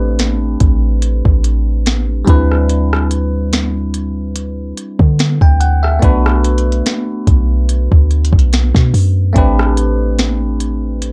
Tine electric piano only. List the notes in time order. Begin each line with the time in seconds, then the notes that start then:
Already playing: A3 C4 D4 G4 B4
2.25 G3 C4 D4 E4
2.30 B4
5.42 G5
5.60 F#5
5.83 E5
5.99 A3 B3 D4 F#4
6.04 B4
9.33 A3 C4 D4 G4
9.38 B4